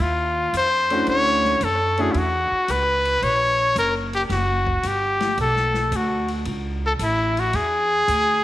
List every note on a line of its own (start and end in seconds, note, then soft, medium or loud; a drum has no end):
0.00 0.52 D#2 medium
0.00 0.54 F4 medium
0.00 kick soft
0.53 1.05 F2 medium
0.53 kick soft
0.53 hi-hat pedal medium
0.53 ride medium
0.57 1.05 C5 loud
0.90 1.58 A3 medium
0.90 1.58 C#4 medium
0.90 1.59 D4 medium
0.90 1.59 E4 medium
0.90 1.59 F#4 medium
0.90 ride medium
1.06 1.59 D2 medium
1.06 1.65 C#5 loud
1.06 kick soft
1.06 ride medium
1.45 snare soft
1.61 2.13 F#2 medium
1.61 2.02 A4 medium
1.61 kick soft
1.61 hi-hat pedal medium
1.61 ride medium
1.97 2.13 A3 medium
1.97 2.13 C#4 medium
1.97 2.14 D4 medium
1.97 2.14 E4 medium
1.97 2.14 F#4 medium
1.97 2.14 G#4 medium
1.97 ride soft
2.12 2.49 E2 medium
2.12 2.19 E4 medium
2.12 kick soft
2.12 ride medium
2.17 2.73 F#4 medium
2.51 muted upright bass stroke soft
2.68 3.21 C#2 medium
2.68 3.25 B4 medium
2.68 kick soft
2.68 hi-hat pedal medium
2.68 ride medium
3.05 ride soft
3.22 3.75 A#1 medium
3.22 3.77 C#5 loud
3.22 kick soft
3.22 ride medium
3.76 4.28 F#1 medium
3.76 3.95 A#4 medium
3.76 kick soft
3.76 hi-hat pedal medium
3.76 ride medium
4.13 4.22 G4 medium
4.13 ride soft
4.29 4.82 F#1 medium
4.29 4.89 F#4 medium
4.29 kick soft
4.29 snare soft
4.29 ride medium
4.67 kick soft
4.83 5.36 G1 medium
4.83 kick soft
4.83 hi-hat pedal medium
4.83 ride medium
4.87 5.40 G4 medium
5.20 snare medium
5.20 ride soft
5.38 5.90 B1 medium
5.38 5.98 A4 loud
5.38 kick soft
5.38 ride medium
5.56 snare soft
5.74 snare soft
5.92 6.44 D2 medium
5.92 kick soft
5.92 hi-hat pedal medium
5.92 ride medium
5.96 6.31 F#4 medium
6.28 ride soft
6.45 6.98 C#2 medium
6.45 kick soft
6.45 ride medium
6.86 6.93 A4 medium
6.99 7.52 A1 medium
6.99 7.41 E4 medium
6.99 kick soft
6.99 hi-hat pedal medium
6.99 ride medium
7.37 7.57 F#4 medium
7.37 ride soft
7.53 8.06 E2 medium
7.53 8.44 G#4 loud
7.53 kick soft
7.53 ride medium
8.08 8.42 D2 medium
8.08 kick soft
8.08 hi-hat pedal medium
8.08 ride medium